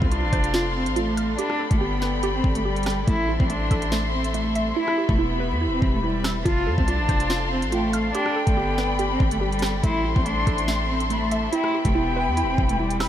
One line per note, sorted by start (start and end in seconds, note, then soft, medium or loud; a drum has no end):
0.00 0.24 C2 loud
0.00 0.10 C4 medium
0.00 0.11 F4 loud
0.00 0.96 A4 medium
0.00 4.72 A4 medium
0.00 1.37 C5 medium
0.00 1.37 F5 medium
0.00 1.37 C6 medium
0.00 kick loud
0.12 0.71 D4 loud
0.12 0.53 F4 medium
0.12 closed hi-hat medium
0.23 0.32 A1 loud
0.33 0.88 F1 loud
0.33 1.38 C5 medium
0.33 kick loud
0.33 closed hi-hat medium
0.44 closed hi-hat medium
0.54 0.95 F4 medium
0.54 snare loud
0.76 0.93 C4 medium
0.86 1.36 A1 loud
0.86 closed hi-hat medium
0.96 1.36 A3 medium
0.96 1.39 F4 medium
0.96 closed hi-hat medium
1.17 1.38 F6 medium
1.17 closed hi-hat medium
1.38 1.68 D4 loud
1.38 1.80 G4 medium
1.38 3.06 D5 medium
1.38 3.06 G5 medium
1.38 3.06 B5 medium
1.38 closed hi-hat medium
1.50 cross-stick medium
1.60 2.65 A4 medium
1.71 2.41 G1 loud
1.71 1.79 A3 medium
1.71 kick loud
1.71 closed hi-hat medium
1.81 2.31 B3 medium
1.81 2.22 G4 medium
2.02 3.08 B4 medium
2.02 snare medium
2.23 2.64 G4 medium
2.23 closed hi-hat medium
2.35 2.53 C4 loud
2.44 3.05 G1 loud
2.44 kick loud
2.55 2.64 A3 medium
2.55 closed hi-hat medium
2.65 3.05 G3 loud
2.65 3.07 G4 medium
2.76 closed hi-hat soft
2.83 3.08 G5 loud
2.83 cross-stick medium
2.83 snare loud
2.83 closed hi-hat medium
2.90 closed hi-hat medium
3.07 3.39 A1 loud
3.07 3.49 A3 loud
3.07 3.38 E4 loud
3.07 4.75 C5 medium
3.07 6.42 E5 medium
3.07 4.75 C6 medium
3.07 kick loud
3.07 closed hi-hat medium
3.29 4.34 E4 medium
3.39 3.70 A1 loud
3.39 3.48 C4 medium
3.39 kick loud
3.49 3.91 A3 medium
3.49 4.09 D4 medium
3.49 closed hi-hat medium
3.71 4.73 A1 loud
3.71 4.77 A4 medium
3.71 kick loud
3.71 closed hi-hat medium
3.82 closed hi-hat medium
3.92 4.33 A3 medium
3.92 snare loud
4.13 4.31 C4 medium
4.24 closed hi-hat medium
4.34 4.74 A3 medium
4.34 4.77 A3 medium
4.34 closed hi-hat medium
4.55 4.77 E5 medium
4.55 closed hi-hat medium
4.76 5.17 E4 loud
4.76 5.07 E4 loud
4.76 6.44 G4 medium
4.76 6.44 B4 medium
4.76 6.44 B5 medium
4.88 cross-stick medium
4.98 6.03 G4 medium
5.09 5.53 E1 loud
5.09 5.17 A3 medium
5.09 kick loud
5.19 5.69 B3 medium
5.19 5.60 E4 medium
5.40 6.46 B4 medium
5.51 5.68 E2 loud
5.61 6.02 E4 medium
5.67 5.81 E1 loud
5.73 5.91 C4 medium
5.82 6.43 E1 loud
5.82 kick loud
5.93 6.02 A3 medium
6.03 6.43 G3 medium
6.03 6.46 E4 medium
6.24 6.45 E6 medium
6.24 cross-stick medium
6.24 snare loud
6.45 6.68 F1 loud
6.45 6.87 F4 loud
6.45 6.76 F4 loud
6.45 11.49 A4 medium
6.45 8.13 C5 medium
6.45 8.13 F5 medium
6.45 7.68 A5 loud
6.45 8.13 C6 medium
6.45 kick loud
6.45 closed hi-hat medium
6.67 6.77 F2 loud
6.67 7.72 A4 medium
6.78 7.01 C2 loud
6.78 6.86 C4 medium
6.78 kick medium
6.88 7.47 D4 loud
6.88 7.29 F4 medium
6.88 closed hi-hat medium
6.99 7.08 A1 loud
7.09 7.64 F1 loud
7.09 8.15 C5 medium
7.09 kick loud
7.09 closed hi-hat medium
7.20 closed hi-hat medium
7.30 7.71 F4 medium
7.30 snare loud
7.51 7.69 C4 medium
7.62 8.12 A1 loud
7.62 closed hi-hat medium
7.72 8.12 A3 medium
7.72 8.15 F4 medium
7.72 7.92 G5 medium
7.72 closed hi-hat medium
7.93 8.14 F5 medium
7.93 8.15 F6 medium
7.93 closed hi-hat medium
8.13 8.44 D4 loud
8.13 8.56 G4 medium
8.13 9.82 D5 medium
8.13 9.37 G5 loud
8.13 9.82 G5 medium
8.13 9.82 B5 medium
8.13 closed hi-hat medium
8.26 cross-stick medium
8.36 9.41 A4 medium
8.47 9.17 G1 loud
8.47 8.55 A3 medium
8.47 kick loud
8.47 closed hi-hat medium
8.57 9.07 B3 medium
8.57 8.98 G4 medium
8.78 9.84 B4 medium
8.78 snare medium
8.99 9.40 G4 loud
8.99 closed hi-hat medium
9.11 9.29 C4 loud
9.20 9.81 G1 loud
9.20 kick loud
9.31 9.40 A3 medium
9.31 closed hi-hat medium
9.41 9.81 G3 loud
9.41 9.83 G4 medium
9.53 closed hi-hat soft
9.59 9.84 G5 loud
9.59 cross-stick medium
9.59 snare loud
9.59 closed hi-hat medium
9.66 closed hi-hat medium
9.83 10.15 A1 loud
9.83 10.25 A3 loud
9.83 10.14 E4 loud
9.83 11.51 C5 medium
9.83 13.09 E5 medium
9.83 11.51 C6 medium
9.83 11.06 C6 loud
9.83 kick loud
9.83 closed hi-hat medium
10.05 11.11 E4 medium
10.15 10.46 A1 loud
10.15 10.24 C4 medium
10.15 kick loud
10.25 10.67 A3 medium
10.25 10.85 D4 medium
10.25 closed hi-hat medium
10.47 11.49 A1 loud
10.47 11.53 A4 medium
10.47 kick loud
10.47 closed hi-hat medium
10.58 closed hi-hat medium
10.68 11.09 A3 medium
10.68 snare loud
10.89 11.07 C4 medium
11.00 closed hi-hat medium
11.10 11.50 A3 medium
11.10 11.53 A3 medium
11.10 11.31 B5 medium
11.10 closed hi-hat medium
11.31 11.53 E5 medium
11.31 11.52 A5 medium
11.31 closed hi-hat medium
11.53 11.94 E4 medium
11.53 11.83 E4 loud
11.53 13.09 G4 medium
11.53 13.09 B4 medium
11.53 12.97 G5 loud
11.53 13.09 B5 medium
11.53 closed hi-hat medium
11.64 cross-stick medium
11.74 12.80 G4 medium
11.85 12.29 E1 loud
11.85 11.93 A3 medium
11.85 kick medium
11.85 closed hi-hat medium
11.95 12.45 B3 medium
11.95 12.36 E4 medium
12.16 13.09 B4 medium
12.27 12.44 E2 loud
12.37 12.78 E4 medium
12.37 closed hi-hat medium
12.43 12.57 E1 loud
12.49 12.67 C4 medium
12.58 13.09 E1 loud
12.58 kick loud
12.69 12.78 A3 medium
12.69 closed hi-hat medium
12.79 13.09 G3 loud
12.79 13.09 E4 medium
12.91 closed hi-hat medium
13.00 13.09 B5 medium
13.00 13.09 E6 medium
13.00 cross-stick medium
13.00 snare loud
13.00 open hi-hat medium